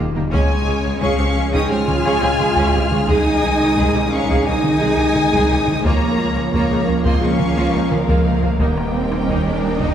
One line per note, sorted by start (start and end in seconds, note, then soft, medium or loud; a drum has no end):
0.00 0.35 D#1 medium
0.00 0.29 D#3 medium
0.00 0.33 D#3 medium
0.00 0.29 G3 medium
0.00 0.28 A#3 medium
0.00 0.33 A#3 medium
0.00 0.29 D#4 medium
0.00 0.33 G4 medium
0.00 0.33 D#5 medium
0.15 0.23 D#2 medium
0.15 0.22 A#3 medium
0.15 0.27 D#4 medium
0.15 0.22 G4 medium
0.15 taiko mid medium
0.31 3.10 C#2 medium
0.31 0.40 C#2 loud
0.31 0.43 C#3 loud
0.31 3.05 C#3 medium
0.31 0.98 G#3 loud
0.31 5.85 G#3 medium
0.31 5.67 G#3 medium
0.31 0.48 C#4 medium
0.31 3.09 C#4 medium
0.31 3.05 C#4 medium
0.31 0.48 G#4 medium
0.31 5.85 G#4 medium
0.31 5.81 G#4 medium
0.31 3.09 C#5 medium
0.31 0.98 C#5 loud
0.31 0.98 G#5 loud
0.31 taiko loud
0.65 0.74 C#2 medium
0.65 0.78 G#3 medium
0.65 0.73 C#4 medium
0.65 0.73 G#4 medium
0.83 0.91 C#2 medium
0.83 0.90 G#3 medium
0.83 0.95 C#4 medium
0.83 0.91 F4 medium
0.99 1.09 C#2 loud
0.99 1.12 C#3 loud
0.99 1.17 C#4 loud
0.99 1.53 C#4 loud
0.99 1.17 G#4 loud
0.99 1.54 F5 loud
0.99 1.53 C#6 loud
0.99 taiko medium
1.18 1.26 C#2 medium
1.18 1.25 C4 medium
1.18 1.29 C#4 medium
1.18 1.25 G4 medium
1.35 1.44 C#2 medium
1.35 1.47 F3 medium
1.35 1.42 C#4 medium
1.35 1.43 G#4 medium
1.52 1.61 C#2 loud
1.52 1.64 C#3 loud
1.52 1.69 C#4 loud
1.52 1.71 D#4 loud
1.52 1.69 G#4 loud
1.52 1.71 G5 loud
1.52 1.70 D#6 loud
1.52 taiko medium
1.69 1.78 C#2 medium
1.69 1.81 G#3 medium
1.69 1.77 C4 medium
1.69 3.09 F4 loud
1.69 1.76 G4 medium
1.69 3.06 G#5 loud
1.69 3.06 F6 loud
1.87 1.95 C#2 medium
1.87 1.99 F3 medium
1.87 1.94 C#4 medium
1.87 1.94 G#4 medium
1.87 taiko mid medium
2.04 2.12 C#2 loud
2.04 2.15 C#3 loud
2.04 2.21 C#4 loud
2.04 2.21 G#4 loud
2.21 2.29 C#2 medium
2.21 2.28 C4 medium
2.21 2.33 C#4 medium
2.21 2.28 G4 medium
2.38 2.46 C#2 medium
2.38 2.46 C#4 medium
2.38 2.50 C#4 medium
2.38 2.46 G#4 medium
2.38 taiko mid medium
2.56 2.63 C#2 loud
2.56 2.67 C#3 loud
2.56 2.73 C#4 loud
2.56 2.72 G#4 loud
2.56 taiko medium
2.74 2.81 C#2 medium
2.74 2.85 G#3 medium
2.74 2.81 C4 medium
2.74 2.81 G4 medium
2.91 2.99 C#2 medium
2.91 3.01 C#4 medium
2.91 2.98 C#4 medium
2.91 2.98 G#4 medium
2.91 taiko mid medium
3.07 5.86 C2 medium
3.07 3.16 C2 loud
3.07 5.67 D#3 medium
3.07 3.18 G#3 loud
3.07 3.25 G#3 loud
3.07 4.12 D#4 loud
3.07 5.84 D#4 medium
3.07 5.81 D#4 medium
3.07 3.25 G#4 medium
3.07 5.84 D#5 medium
3.07 4.09 G#5 loud
3.07 4.12 D#6 loud
3.07 taiko loud
3.43 3.50 C2 medium
3.43 3.50 G#3 medium
3.43 3.53 D#4 medium
3.43 3.50 G#4 medium
3.60 3.67 C2 medium
3.60 3.69 D#3 medium
3.60 3.68 D#4 medium
3.60 3.70 G#4 medium
3.77 3.84 C2 loud
3.77 3.87 G#3 loud
3.77 3.94 G#3 loud
3.77 3.94 G#4 loud
3.77 taiko medium
3.94 4.01 C2 medium
3.94 4.02 G3 medium
3.94 4.02 G4 medium
3.94 4.05 G#4 medium
4.11 4.19 C2 medium
4.11 4.19 G#3 medium
4.11 4.22 C4 medium
4.11 4.46 C#4 loud
4.11 4.19 G#4 medium
4.11 4.46 F5 loud
4.11 4.46 C#6 loud
4.29 4.36 C2 loud
4.29 4.45 G#3 medium
4.29 4.39 G#3 loud
4.29 4.45 G#4 loud
4.29 taiko medium
4.45 4.53 C2 medium
4.45 4.52 G3 medium
4.45 4.57 D#4 medium
4.45 5.85 D#4 loud
4.45 4.52 G4 medium
4.45 5.84 G#5 loud
4.45 5.82 D#6 loud
4.63 4.70 C2 medium
4.63 4.70 G#3 medium
4.63 4.74 C4 medium
4.63 4.70 G#4 medium
4.63 taiko mid medium
4.80 4.87 C2 loud
4.80 4.97 G#3 loud
4.80 4.91 G#3 loud
4.80 4.97 G#4 medium
4.97 5.04 C2 medium
4.97 5.05 G3 medium
4.97 5.05 G4 medium
4.97 5.08 G#4 medium
5.14 5.22 C2 medium
5.14 5.22 G#3 medium
5.14 5.22 G#4 medium
5.14 5.26 G#4 medium
5.14 taiko mid medium
5.31 5.38 C2 loud
5.31 5.42 G#3 loud
5.31 5.49 G#3 loud
5.31 5.49 G#4 loud
5.31 taiko medium
5.48 5.56 C2 medium
5.48 5.56 G3 medium
5.48 5.60 D#4 medium
5.48 5.57 G4 medium
5.66 5.73 C2 medium
5.66 5.74 G#3 medium
5.66 5.76 G#4 medium
5.66 5.74 G#4 medium
5.66 taiko mid medium
5.83 5.90 C#2 loud
5.83 8.62 C#2 medium
5.83 8.60 C#3 medium
5.83 8.56 F3 medium
5.83 8.61 F3 medium
5.83 5.94 A#3 loud
5.83 9.94 A#3 medium
5.83 6.52 A#3 loud
5.83 9.94 A#3 medium
5.83 6.01 A#3 loud
5.83 6.01 F4 medium
5.83 9.94 A#4 medium
5.83 8.60 C#5 medium
5.83 6.51 C#5 loud
5.83 6.52 A#5 loud
5.83 taiko loud
5.83 riser medium
6.18 6.25 C#2 medium
6.18 6.25 A#3 medium
6.18 6.29 F4 medium
6.18 6.26 F4 medium
6.35 6.42 C#2 medium
6.35 6.43 F3 medium
6.35 6.43 C#4 medium
6.35 6.46 A#4 medium
6.52 6.59 C#2 loud
6.52 6.63 A#3 loud
6.52 6.70 A#3 loud
6.52 7.04 A#3 loud
6.52 6.70 F4 loud
6.52 7.04 C#5 loud
6.52 7.04 A#5 loud
6.52 taiko medium
6.69 6.77 C#2 medium
6.69 6.78 G#3 medium
6.69 6.78 D#4 medium
6.69 6.80 A#4 medium
6.87 6.94 C#2 medium
6.87 6.95 A#3 medium
6.87 6.98 C#4 medium
6.87 6.95 F4 medium
7.04 7.11 C#2 medium
7.04 7.15 A#3 loud
7.04 7.21 A#3 loud
7.04 7.22 C4 medium
7.04 7.21 F4 loud
7.04 7.23 D#5 medium
7.04 7.22 C6 loud
7.04 taiko medium
7.21 7.29 C#2 medium
7.21 7.29 G#3 medium
7.21 7.90 C#4 loud
7.21 7.29 D#4 medium
7.21 7.32 F4 medium
7.21 7.92 F5 loud
7.21 7.91 C#6 loud
7.38 7.46 C#2 medium
7.38 7.45 A#3 medium
7.38 7.50 C#4 medium
7.38 7.45 F4 medium
7.38 taiko mid medium
7.56 7.63 C#2 medium
7.56 7.72 A#3 medium
7.56 7.67 A#3 loud
7.56 7.72 F4 loud
7.73 7.80 C#2 medium
7.73 7.81 G#3 medium
7.73 7.81 D#4 medium
7.73 7.84 A#4 medium
7.91 7.98 C#2 medium
7.91 8.60 F3 medium
7.91 7.98 A#3 medium
7.91 7.98 F4 medium
7.91 8.02 A#4 medium
7.91 8.60 A#4 medium
7.91 8.60 F5 loud
7.91 taiko mid medium
8.08 8.15 C#2 medium
8.08 8.24 A#3 medium
8.08 8.19 A#3 loud
8.08 8.25 F4 medium
8.08 taiko medium
8.25 8.33 C#2 medium
8.25 8.32 G#3 medium
8.25 8.32 D#4 medium
8.25 8.36 F4 medium
8.42 8.50 C#2 medium
8.42 8.49 A#3 medium
8.42 8.49 F4 medium
8.42 8.53 A#4 medium
8.42 taiko mid medium
8.59 9.94 D#1 medium
8.59 8.67 D#2 medium
8.59 9.94 D#3 medium
8.59 8.70 D#3 loud
8.59 9.94 D#3 medium
8.59 9.94 G3 medium
8.59 8.76 A#3 medium
8.59 8.76 D#4 medium
8.59 9.94 A#4 medium
8.59 9.94 D#5 medium
8.59 9.94 G5 loud
8.59 taiko loud
8.77 taiko rim soft
8.94 9.02 D#2 medium
8.94 9.05 A#3 medium
8.94 9.02 A#3 medium
8.94 9.02 D#4 medium
9.11 9.18 D#2 medium
9.11 9.19 G3 medium
9.11 9.19 A#3 medium
9.11 9.22 D#4 medium
9.11 taiko rim soft
9.28 9.36 D#2 medium
9.28 9.39 D#3 loud
9.28 9.45 A#3 medium
9.28 9.45 D#4 medium
9.28 taiko medium
9.46 9.54 D#2 medium
9.46 9.53 G#3 medium
9.46 9.53 C#4 medium
9.46 9.57 D#4 medium
9.63 9.71 D#2 medium
9.63 9.74 G3 medium
9.63 9.70 A#3 medium
9.63 9.70 D#4 medium
9.79 9.88 D#2 medium
9.79 9.91 D#3 loud
9.79 9.94 A#3 medium
9.79 9.94 D#4 medium
9.79 taiko medium